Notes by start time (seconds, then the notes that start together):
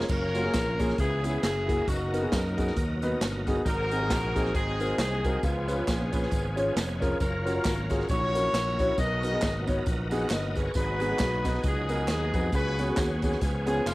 0.00 snare
0.09 F#1 F#3 A#3 C#4 F4 A#4, kick, crash, tambourine
0.35 A#3 C#4 F4 F#4, closed hi-hat, tambourine
0.44 A#3 C#4 F4 G#4
0.54 A#1, kick, snare, clap, closed hi-hat, tambourine
0.79 A#3 C#4 F4 G#4, kick, snare, closed hi-hat, tambourine
0.89 snare
0.98 C#2 C#3 E3 B3 C#4 E4 G4 G#4, kick, closed hi-hat, tambourine
1.05 G#4
1.24 B3 C#4 E4 G#4, closed hi-hat, tambourine
1.43 F#1 F#3 A3 C#4 E4 G#4, snare, clap, closed hi-hat, tambourine
1.50 A#3
1.68 A#3 E4 F#4 G#4, kick, closed hi-hat, tambourine
1.87 F#1 B2 F#3 A#3 D#4 F#4 A#4, kick, closed hi-hat, tambourine
2.13 B3 D#4 F#4 A#4, closed hi-hat, tambourine
2.22 B3 D#4 F#4 G#4
2.32 F#2 D#4 A#4, kick, snare, clap, closed hi-hat, tambourine
2.57 B3 D#4 F#4 G#4, kick, closed hi-hat, tambourine
2.67 snare
2.76 D#2, kick, closed hi-hat, tambourine
3.02 B3 D#4 F#4 B4, closed hi-hat, tambourine
3.21 G1, snare, clap, closed hi-hat, tambourine
3.47 B3 D#4 F#4 G#4, kick, closed hi-hat, tambourine
3.65 G#1 G#2 F#3 C4 D#4 F#4 G4 A#4, kick, closed hi-hat, tambourine
3.70 G#4
3.91 C4 D#4 F#4 G#4, closed hi-hat, tambourine
4.02 C4 D#4 F#4 G#4
4.10 A#1, kick, snare, clap, closed hi-hat, tambourine
4.35 C4 D#4 F#4 G#4, kick, snare, closed hi-hat, tambourine
4.46 snare
4.54 G#1 C4 D#4 G#4, kick, closed hi-hat, tambourine
4.80 C4 D#4 F#4 A#4, closed hi-hat, tambourine
4.98 C2 C4 D#4 G#4, snare, clap, closed hi-hat, tambourine
5.24 C4 D#4 F#4 A#4, kick, closed hi-hat, tambourine
5.43 C#2 C#3 E3 G#3 B3 C#4 F4 G#4, kick, closed hi-hat, tambourine
5.50 F3
5.67 C#4 F4 G#4 B4, closed hi-hat, tambourine
5.78 C#4 F4 G#4 B4
5.87 A#1 B3 F4 G#4, kick, snare, clap, closed hi-hat, tambourine
6.12 C#4 F4 G#4 B4, kick, closed hi-hat, tambourine
6.23 snare
6.31 G#1, kick, closed hi-hat, tambourine
6.56 C#4 F4 G#4 C#5, closed hi-hat, tambourine
6.76 F1, snare, clap, closed hi-hat, tambourine
7.00 C#4 F4 G#4 A#4, kick, closed hi-hat, tambourine
7.20 F#1 F#3 C#4 F4 A#4, kick, closed hi-hat, tambourine
7.45 C#4 F4 F#4 A#4, closed hi-hat, tambourine
7.55 C#4 F4 F#4 A#4
7.65 G#1, kick, snare, clap, closed hi-hat, tambourine
7.90 C#4 F4 F#4 G#4 A#4, kick, snare, closed hi-hat, tambourine
8.00 snare
8.09 A#1 A#2 F#3 C#4 E4 F#4 G#4 C#5, kick, closed hi-hat, tambourine
8.16 A#4
8.35 C#4 E4 F#4 A#4, closed hi-hat, tambourine
8.53 A#1, snare, clap, closed hi-hat, tambourine
8.79 C#4 E4 F#4 C#5, kick, closed hi-hat, tambourine
8.98 B1 B2 F#3 B3 D#4 F#4 A#4 D#5, kick, closed hi-hat, tambourine
9.23 B3 D#4 F#4 A#4, closed hi-hat, tambourine
9.32 B3 D#4 F#4 G#4
9.42 G#1, kick, snare, clap, closed hi-hat, tambourine
9.67 B3 D#4 F#4 C#5, kick, closed hi-hat, tambourine
9.86 A#1, kick, closed hi-hat, tambourine
10.11 B3 D#4 F#4 G#4 F#5, closed hi-hat, tambourine
10.30 G1 B4 D#5, snare, clap, closed hi-hat, tambourine
10.55 G#4 B4, kick, closed hi-hat, tambourine
10.60 C#5
10.74 G#1 G#2 F#3 B3 D#4 F#4 G#4 B4, kick, closed hi-hat, tambourine
11.00 B3 D#4 F#4 G#4, closed hi-hat, tambourine
11.11 B3 D#4 F#4 G#4
11.19 B1, kick, snare, clap, closed hi-hat, tambourine
11.45 B3 D#4 F#4 B4, kick, snare, closed hi-hat, tambourine
11.54 snare
11.63 C#2 B3 D#4 G#4, kick, closed hi-hat, tambourine
11.89 B3 D#4 F#4 A#4, closed hi-hat, tambourine
12.08 D#2 B3 D#4 G#4, snare, clap, closed hi-hat, tambourine
12.34 F2 B3 D#4 F#4 G#4, kick, closed hi-hat, tambourine
12.52 C#2 C#3 F#3 B3 C#4 F#4 G#4 B4, kick, closed hi-hat, tambourine
12.78 B3 C#4 F#4 G#4, closed hi-hat, tambourine
12.89 B3 C#4 F#4 G#4
12.97 D#2 B3 G#4, kick, snare, clap, closed hi-hat, tambourine
13.22 B3 C#4 F#4 G#4, kick, closed hi-hat, tambourine
13.32 snare
13.41 C#2 C#3 F3 B3 C#4 G#4, kick, closed hi-hat, tambourine
13.66 B3 C#4 F4 G#4, closed hi-hat, tambourine
13.85 F1 G#3 B3 F4, snare, clap, tambourine